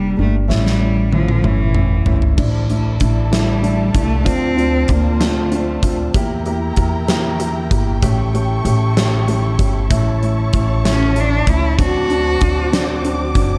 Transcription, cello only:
Already playing: G3
0.21 A3
0.52 G3
1.15 F3
1.47 E3
3.33 G3
3.96 A3
4.27 C4
4.91 A#3
5.23 A3
10.89 C#4
11.20 D4
11.49 E4
11.80 F#4

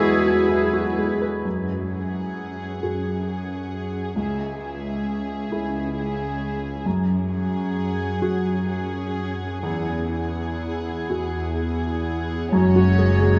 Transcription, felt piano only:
Already playing: E2 F#4 A4 B4
0.00 G#4
0.26 F#4
0.49 E4
0.73 F#4
0.98 G#3
1.21 B4
1.45 F#2
2.83 F#4 G#4
4.16 C#2
5.52 E4 G#4
6.86 F#2
8.22 F#4 G#4
9.63 E2
11.10 F#4 G#4
12.52 F#2
12.76 F#4
12.98 G#4
13.21 G#3

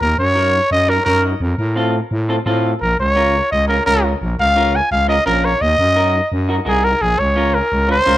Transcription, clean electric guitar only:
0.35 D#4 F#4 A#4
0.88 D#4 F#4 A#4
1.06 D#4 F#4 A#4
1.76 C4 F4 A4
2.29 C4 F4 A4
2.46 C4 F4 A4
3.16 C#4 F4 A#4
3.69 C#4 F4 A#4
3.86 C#4 F4 A#4
4.56 C#4 F4 A#4
5.08 C#4 F4 A#4
5.26 C#4 F4 A#4
5.96 D#4 F#4 A#4
6.49 D#4 F#4 A#4
6.65 D#4 F#4 A#4
7.36 C#4 F4 A#4
7.88 C#4 F4 A#4
8.06 C#4 F4 A#4

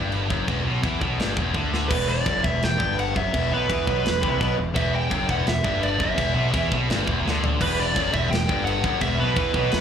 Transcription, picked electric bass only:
Already playing: G1
0.31 F#1
0.49 E1
0.65 B1
0.83 E2
1.01 B1
1.19 G1
1.37 E1
1.55 D2
1.90 E1
2.26 F#1
2.44 E1
2.63 E1
2.80 G1
3.16 F#1
3.34 E1
3.51 B1
3.70 E2
3.87 B1
4.05 E1
4.23 C2
4.41 B1
4.58 E1
4.76 E1
5.11 F#1
5.29 E1
5.45 E1
5.64 G1
6.00 F#1
6.18 E1
6.34 B1
6.54 E2
6.71 B1
6.89 G1
7.07 E1
7.24 D2
7.61 E1
7.96 F#1
8.14 E1
8.30 E1
8.49 G1
8.84 F#1
9.02 E1
9.19 B1
9.36 E2
9.53 B1
9.72 E1

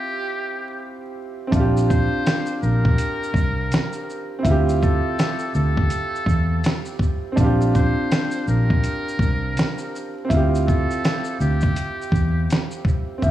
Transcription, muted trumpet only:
Already playing: G4
1.89 C5
2.64 A#4
4.83 A4
5.56 A4
7.75 C5
8.49 A#4
10.68 A4
11.41 G4
13.24 G4

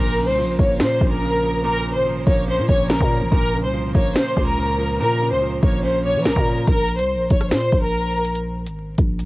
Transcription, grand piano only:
Already playing: A#2
0.17 C#3
0.38 F3
0.59 A#3
0.80 C#4
1.01 A#2
1.22 C#3
1.43 F3
1.64 A#2
1.85 C#3
2.06 F3
2.27 A#3
2.48 C#4
2.69 A#2
2.89 C#3
3.11 F3
3.32 A#2
3.53 C#3
3.74 F3
3.95 A#3
4.16 C#4
4.36 A#2
4.58 C#3
4.78 F3
5.00 A#2
5.21 C#3
5.42 F3
5.63 A#3
5.83 C#4
6.04 A#2
6.26 C#3
6.46 F3

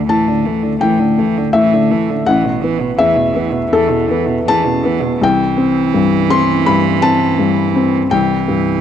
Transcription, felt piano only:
Already playing: D2 A3
0.09 A2 A5
0.46 A3
0.81 A2 G5
1.18 A3
1.53 A2 E5
1.92 A3
2.26 A1 F#5
2.64 B3
2.98 E2 E5
3.36 B3
3.73 E2 A4
4.11 B3
4.48 E2 A5
4.85 B3
5.21 C2 G5
5.57 C4
5.94 G2
6.30 C4 C6
6.66 G2 B5
7.02 C4 A5
7.39 G2
7.76 C4
8.11 C2 G5
8.48 G2

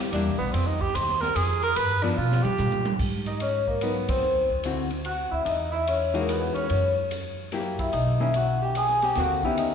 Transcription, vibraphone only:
3.29 D#5
3.43 C#5
3.71 A#4
3.84 B4
4.11 C5
5.06 F#5
5.34 E5
5.48 D#5
5.74 E5
5.90 C#5
6.17 A#4
6.32 B4
6.58 C#5
7.81 E5
7.94 D#5
8.22 E5
8.38 F#5
8.65 G5
8.78 G#5
9.03 G5
9.17 F#5
9.45 E5
9.58 D#5

